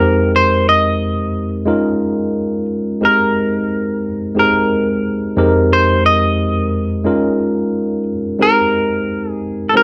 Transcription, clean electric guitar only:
Already playing: A#4
0.36 C5
0.69 D#5
3.05 A#4
4.39 A#4
5.73 C5
6.06 D#5
8.42 A#4
9.30 G#4
9.69 A4
9.77 A#4

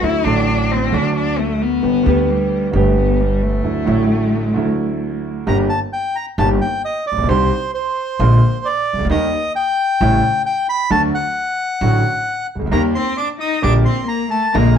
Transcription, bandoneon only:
5.48 A#5
5.69 A5
5.93 G5
6.16 A#5
6.39 A5
6.61 G5
6.85 D#5
7.07 D5
7.29 C5
7.74 C5
8.65 D5
9.11 D#5
9.56 G5
10.46 G5
10.69 B5
10.91 A5
11.15 F#5
12.72 A#5
12.95 C6
13.18 D6
13.40 D#6
13.63 D6
13.85 C6
14.08 A#5
14.31 A5
14.54 A#5

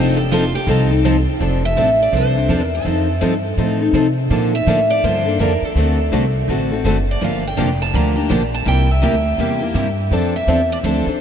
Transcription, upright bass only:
Already playing: F1
0.67 C2
1.40 F1
1.77 A1
2.12 C2
2.49 E2
2.85 F2
3.22 G2
3.58 A2
3.93 C3
4.30 A#2
4.67 A2
5.04 G2
5.39 F2
5.62 muted upright bass stroke
5.75 D2
6.12 C2
6.48 A1
6.84 F#1
7.22 G1
7.58 F1
7.94 D2
8.30 A#1
8.66 C2
9.03 D2
9.38 E2
9.74 G2
10.11 F2
10.47 E2
10.83 D2
11.06 muted upright bass stroke

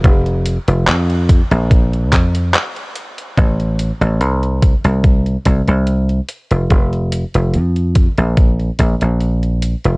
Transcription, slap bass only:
0.04 F1
0.68 F1
0.87 F2
1.51 A#1
2.12 F2
3.38 A1
4.01 A1
4.20 C2
4.84 C2
5.46 C2
5.68 C2
6.51 F1
6.71 F1
7.35 F1
7.54 F2
8.18 A#1
8.79 A#1
9.02 A#1
9.85 F1

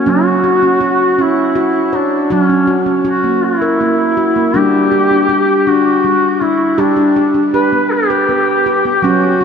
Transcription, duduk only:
Already playing: C#4
0.10 F#4
1.22 E4
1.96 D4
2.32 C#4
3.07 F#4
3.45 E4
4.57 G4
5.68 F#4
6.42 E4
6.79 D4
7.55 B4
7.92 G4
9.03 F#4

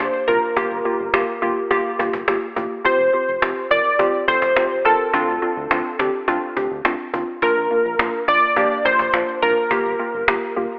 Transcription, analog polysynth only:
Already playing: C5
0.28 A#4
2.85 C5
3.71 D5
4.28 C5
4.85 A4
7.43 A#4
8.28 D5
8.85 C5
9.42 A#4

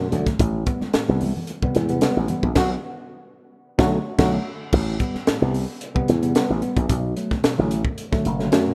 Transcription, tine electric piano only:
0.00 B2
0.13 D3 F#3 A3
0.40 A2
0.66 G3 B3
0.94 A2
1.08 C3 G3 B3
1.21 G3 B3
1.63 C3 G3 B3
1.75 A2
1.89 C3 G3 B3
2.02 G3 B3
2.16 A2
2.29 G3 B3
3.78 D3 F#3 A3
4.18 D3 F#3 A3
4.73 A2
4.99 G3 B3
5.27 A2
5.41 C3 G3 B3
5.54 G3 B3
5.95 C3 G3 B3
6.07 A2
6.22 C3 G3 B3
6.35 G3 B3
6.49 A2
6.62 G3 B3
6.89 B2
7.16 F#3 A3
7.43 B2
7.58 D3 F#3 A3
7.71 F#3 A3
8.12 D3 F#3 A3
8.25 B2
8.39 D3 F#3 A3
8.51 F#3 A3
8.66 B2

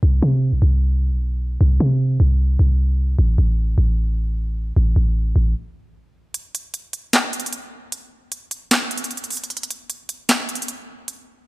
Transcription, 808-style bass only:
0.03 C2
0.23 C3
0.52 B1
0.62 C2
1.11 B1
1.61 C2
1.80 C3
2.20 C2
2.59 C2
3.19 A1
3.38 A1
3.78 A1
4.76 A1
4.96 A1
5.36 A1

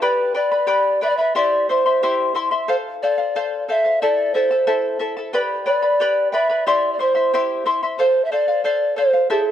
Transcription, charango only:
0.02 G4 B4 D5 G5 B5
0.34 B4 D5 G5 B5
0.51 B4 D5 B5
0.67 G4 B4 D5 G5 B5
1.01 B4 D5 G5 B5
1.18 B4 D5 B5
1.35 E4 G4 C5 E5 C6
1.69 E4 C5 E5 C6
1.86 E4 E5 C6
2.03 E4 G4 C5 E5 C6
2.35 E4 C5 E5 C6
2.51 E4 E5 C6
2.68 A4 C5 F5
3.03 A4 C5 F5
3.18 C5 F5
3.36 A4 C5 F5
3.68 A4 C5 F5
3.84 C5 F5
4.02 E4 A4 C5 E5 A5
4.34 E4 A4 E5 A5
4.51 E4 A4 A5
4.67 E4 A4 C5 E5 A5
4.99 E4 A4 E5 A5
5.17 E4 A4 A5
5.33 G4 B4 D5 G5 B5
5.66 B4 D5 G5 B5
5.82 B4 D5 B5
6.00 G4 B4 D5 G5 B5
6.32 B4 D5 G5 B5
6.49 B4 D5 B5
6.67 E4 G4 C5 E5 C6
6.99 E4 C5 E5 C6
7.15 E4 E5 C6
7.33 E4 G4 C5 E5 C6
7.66 E4 C5 E5 C6
7.83 E4 E5 C6
7.99 A4 C5 F5
8.32 A4 C5 F5
8.48 C5 F5
8.64 A4 C5 F5
8.96 A4 C5 F5
9.13 C5 F5
9.30 E4 A4 C5 E5 A5

